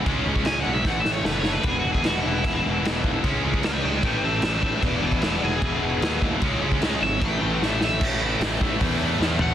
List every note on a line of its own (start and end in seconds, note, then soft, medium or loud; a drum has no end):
0.05 0.22 C#2 medium
0.05 0.24 C#3 medium
0.05 0.24 G#3 medium
0.05 0.25 C#4 medium
0.05 kick loud
0.05 crash medium
0.25 0.42 C#2 loud
0.25 0.42 C#3 medium
0.25 0.43 G#3 medium
0.25 0.44 C#4 medium
0.36 kick medium
0.43 0.62 C#2 medium
0.43 0.64 C#3 medium
0.43 0.65 G#3 medium
0.43 0.65 C#4 medium
0.43 0.59 G#5 medium
0.43 snare loud
0.43 crash medium
0.61 0.73 F#5 medium
0.65 0.82 B1 medium
0.65 0.83 C#3 medium
0.65 0.84 G#3 medium
0.65 0.84 C#4 medium
0.73 0.87 E5 loud
0.84 1.02 A1 loud
0.84 1.03 A2 loud
0.84 1.05 E3 loud
0.84 1.04 A3 loud
0.84 1.00 F#5 medium
0.84 kick loud
0.84 snare medium
1.00 1.11 E5 medium
1.04 1.21 A1 medium
1.04 1.24 A2 medium
1.04 1.25 E3 medium
1.04 1.24 A3 medium
1.04 snare medium
1.11 1.25 C#5 medium
1.24 1.57 F#1 loud
1.24 1.44 A2 medium
1.24 1.45 E3 medium
1.24 1.44 A3 medium
1.24 1.38 B4 medium
1.24 snare loud
1.40 1.52 C#5 loud
1.45 1.63 A2 medium
1.45 1.64 E3 medium
1.45 1.64 A3 medium
1.45 snare loud
1.54 1.66 B4 medium
1.63 1.81 E1 medium
1.63 1.82 E2 medium
1.63 1.83 B2 loud
1.63 1.84 E3 medium
1.63 kick loud
1.63 crash medium
1.67 1.79 G#4 loud
1.80 2.02 E2 medium
1.80 1.92 F#4 medium
1.84 2.01 E1 loud
1.84 2.03 B2 medium
1.84 2.05 E3 medium
1.93 2.05 G#4 medium
1.93 kick medium
2.03 2.21 E1 medium
2.03 2.21 E2 medium
2.03 2.22 B2 medium
2.03 2.23 E3 loud
2.03 2.20 F#4 loud
2.03 snare loud
2.03 crash medium
2.20 2.42 E2 medium
2.20 2.43 B2 medium
2.20 2.44 E3 medium
2.20 3.35 E4 loud
2.25 2.42 E1 medium
2.44 2.61 E1 loud
2.44 2.61 E2 loud
2.44 2.63 B2 loud
2.44 2.64 E3 loud
2.44 kick loud
2.44 crash medium
2.63 2.82 E1 medium
2.63 2.81 E2 medium
2.63 2.82 B2 medium
2.63 2.84 E3 medium
2.82 3.18 E1 medium
2.82 3.02 E2 medium
2.82 3.03 B2 medium
2.82 3.04 E3 medium
2.82 snare loud
2.82 crash medium
3.03 3.22 E2 medium
3.03 3.22 B2 medium
3.03 3.23 E3 medium
3.03 kick medium
3.23 3.41 C#2 medium
3.23 3.42 C#3 medium
3.23 3.43 G#3 loud
3.23 3.43 C#4 loud
3.23 kick loud
3.23 crash medium
3.43 3.61 C#2 loud
3.43 3.62 C#3 medium
3.43 3.63 G#3 medium
3.43 3.64 C#4 loud
3.54 kick medium
3.63 3.81 C#2 loud
3.63 3.82 C#3 medium
3.63 3.82 G#3 medium
3.63 3.83 C#4 loud
3.63 3.83 B4 medium
3.63 snare loud
3.63 crash medium
3.67 3.84 G5 loud
3.83 4.00 C#2 medium
3.83 4.02 C#3 medium
3.83 4.02 G#3 loud
3.83 4.03 C#4 medium
3.83 4.02 B4 medium
3.83 4.04 G5 loud
4.02 4.20 A1 loud
4.02 4.22 A2 loud
4.02 4.23 E3 loud
4.02 4.23 A3 loud
4.02 4.22 B4 medium
4.02 4.24 G5 loud
4.02 kick loud
4.02 crash medium
4.22 4.39 A1 medium
4.22 4.42 A2 medium
4.22 4.43 E3 medium
4.22 4.43 A3 medium
4.22 4.42 G4 medium
4.22 4.43 E5 medium
4.42 4.76 A1 loud
4.42 4.61 A2 medium
4.42 4.62 E3 medium
4.42 4.62 A3 medium
4.42 4.62 G4 medium
4.42 4.63 E5 medium
4.42 snare loud
4.42 crash medium
4.62 4.81 A2 medium
4.62 4.82 E3 medium
4.62 4.82 A3 loud
4.62 4.82 G4 medium
4.62 4.83 E5 loud
4.62 kick medium
4.81 4.99 E1 medium
4.81 5.00 E2 medium
4.81 5.01 B2 medium
4.81 5.02 E3 medium
4.81 5.01 B4 loud
4.81 5.03 D5 loud
4.81 kick loud
4.81 crash medium
5.01 5.19 E1 loud
5.01 5.20 E2 medium
5.01 5.21 B2 medium
5.01 5.22 E3 medium
5.01 5.22 B4 medium
5.01 5.23 D5 medium
5.12 kick medium
5.21 5.38 E1 medium
5.21 5.39 E2 medium
5.21 5.40 B2 medium
5.21 5.41 E3 medium
5.21 5.42 B4 medium
5.21 5.43 D5 medium
5.21 snare loud
5.21 crash medium
5.40 5.59 E1 medium
5.40 5.60 E2 medium
5.40 5.61 B2 medium
5.40 5.63 E3 loud
5.40 6.20 G#4 loud
5.61 5.79 E1 loud
5.61 5.81 E2 loud
5.61 5.82 B2 loud
5.61 5.83 E3 loud
5.61 kick loud
5.61 crash medium
5.81 5.98 E1 medium
5.81 6.01 E2 medium
5.81 6.02 B2 medium
5.81 6.02 E3 medium
6.01 6.35 D#2 loud
6.01 6.20 E2 medium
6.01 6.21 B2 medium
6.01 6.23 E3 medium
6.01 snare loud
6.01 crash medium
6.21 6.40 E2 medium
6.21 6.41 B2 medium
6.21 6.42 E3 medium
6.21 kick medium
6.42 6.59 C#2 medium
6.42 6.59 C#3 loud
6.42 6.60 G#3 medium
6.42 6.61 C#4 loud
6.42 kick loud
6.42 crash medium
6.61 6.78 C#2 loud
6.61 6.80 C#3 medium
6.61 6.80 G#3 medium
6.61 6.81 C#4 loud
6.72 kick medium
6.81 6.98 C#2 loud
6.81 7.00 C#3 medium
6.81 7.01 G#3 medium
6.81 7.01 C#4 medium
6.81 snare loud
6.81 crash medium
7.01 7.18 G#1 medium
7.01 7.20 C#3 medium
7.01 7.20 G#3 medium
7.01 7.20 C#4 loud
7.01 7.22 E5 loud
7.21 7.38 A1 loud
7.21 7.40 A2 loud
7.21 7.41 E3 loud
7.21 7.42 A3 loud
7.21 7.65 G5 loud
7.21 kick loud
7.21 crash medium
7.41 7.58 A1 medium
7.41 7.60 A2 medium
7.41 7.61 E3 medium
7.41 7.61 A3 medium
7.61 8.01 A1 medium
7.61 7.79 A2 medium
7.61 7.80 E3 medium
7.61 7.81 A3 medium
7.61 snare medium
7.65 7.80 E5 loud
7.80 7.99 A2 medium
7.80 7.99 E3 loud
7.80 8.00 A3 loud
7.80 8.02 E5 loud
7.80 snare loud
8.00 8.34 A1 medium
8.00 8.19 A2 medium
8.00 8.19 E3 medium
8.00 8.20 A3 medium
8.00 kick loud
8.00 crash loud
8.20 8.40 A2 medium
8.20 8.40 E3 loud
8.20 8.41 A3 loud
8.40 8.57 A1 loud
8.40 8.60 A2 medium
8.40 8.60 E3 loud
8.40 8.61 A3 loud
8.40 snare loud
8.40 open hi-hat medium
8.61 8.78 A1 medium
8.61 8.78 A2 medium
8.61 8.79 E3 medium
8.61 8.80 A3 medium
8.61 kick medium
8.80 9.14 E2 loud
8.80 8.99 A2 medium
8.80 9.00 E3 loud
8.80 9.01 A3 loud
8.80 kick loud
8.80 open hi-hat medium
9.01 9.18 A2 medium
9.01 9.19 E3 medium
9.01 9.19 A3 loud
9.19 9.36 E2 loud
9.19 9.38 A2 medium
9.19 9.39 E3 medium
9.19 9.39 A3 medium
9.19 snare medium
9.39 9.54 A1 medium
9.39 9.54 A2 loud
9.39 9.54 E3 medium
9.39 9.54 A3 medium
9.39 9.54 F#5 loud
9.39 floor tom loud